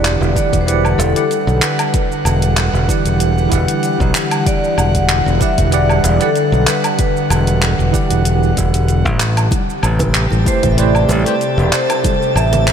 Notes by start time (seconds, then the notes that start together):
Already playing: E1 D3 E3 G3 E4 G4 D5 F#5
0.05 clap, closed hi-hat, shaker
0.21 E1, shaker
0.35 E3 E4 G4 D5 F#5, kick, closed hi-hat, shaker
0.53 E1, kick, closed hi-hat, shaker
0.61 C5
0.66 E3 E4 G4 B4 D5 F#5, closed hi-hat, shaker
0.85 low woodblock, shaker
0.98 E1 A4, closed hi-hat, shaker
1.15 E3 E4 G4 D5 F#5, closed hi-hat, shaker
1.31 closed hi-hat, shaker
1.47 B1, shaker
1.62 B4, clap, closed hi-hat, shaker
1.79 closed hi-hat, low woodblock, shaker
1.94 kick, closed hi-hat, shaker
2.12 shaker
2.25 E1, low woodblock, shaker
2.42 closed hi-hat, shaker
2.57 clap, closed hi-hat, shaker
2.73 E1, shaker
2.87 E3 E4 G4 D5 F#5, kick, closed hi-hat, shaker
3.05 E1, closed hi-hat, shaker
3.20 closed hi-hat, shaker
3.38 shaker
3.49 E1 E3 E4 G4, kick, closed hi-hat, shaker
3.53 D5 F#5
3.68 closed hi-hat, shaker
3.83 closed hi-hat, shaker
4.00 B1, kick, shaker
4.15 clap, closed hi-hat, shaker
4.31 closed hi-hat, low woodblock, shaker
4.46 D5, kick, closed hi-hat, shaker
4.64 shaker
4.78 E1 F#5, low woodblock, shaker
4.95 kick, closed hi-hat, shaker
5.09 clap, closed hi-hat, shaker
5.26 E1, shaker
5.35 F#5
5.40 E3 E4 G4 D5 E5 F#5, kick, closed hi-hat, shaker
5.58 E1, kick, closed hi-hat, shaker
5.71 E3 E4 G4 D5 F#5, closed hi-hat, shaker
5.89 low woodblock, shaker
6.04 E1, closed hi-hat, shaker
6.20 E3 E4 G4 A4 D5 F#5, closed hi-hat, shaker
6.35 closed hi-hat, shaker
6.52 B1, shaker
6.67 B4, clap, closed hi-hat, shaker
6.84 closed hi-hat, low woodblock, shaker
6.99 B4, kick, closed hi-hat, shaker
7.17 shaker
7.30 E1, closed hi-hat, low woodblock, shaker
7.47 closed hi-hat, shaker
7.62 clap, closed hi-hat, shaker
7.79 E1, shaker
7.92 E3 E4 G4 D5 F#5, kick, closed hi-hat, shaker
8.10 E1, closed hi-hat, shaker
8.25 closed hi-hat, shaker
8.43 shaker
8.57 E1, kick, closed hi-hat, shaker
8.74 closed hi-hat, shaker
8.88 closed hi-hat, shaker
9.05 A1, kick, shaker
9.20 C3 G4, clap, closed hi-hat, shaker
9.37 closed hi-hat, low woodblock, shaker
9.51 A4 A5, kick, closed hi-hat, high conga, shaker
9.70 shaker
9.83 A1, low woodblock, shaker
9.99 kick, closed hi-hat, high bongo, low conga, shaker
10.15 clap, closed hi-hat, shaker
10.31 A1, high conga, shaker
10.44 A3 E4 G4 B4 C5, kick, closed hi-hat, high bongo, shaker
10.63 A1, kick, closed hi-hat, shaker
10.72 E5
10.77 A3 E4 G4 B4 C5 D5, closed hi-hat, shaker
10.95 low woodblock, shaker
11.09 A1, closed hi-hat, high bongo, high conga, shaker
11.25 A3 E4 G4 B4 C5, closed hi-hat, shaker
11.41 closed hi-hat, shaker
11.58 E1, shaker
11.73 C5, clap, closed hi-hat, shaker
11.90 closed hi-hat, high bongo, low woodblock, shaker
12.04 kick, closed hi-hat, high conga, shaker
12.22 shaker
12.36 A1 E5, low woodblock, shaker
12.53 closed hi-hat, high bongo, low conga, shaker
12.67 clap, closed hi-hat, shaker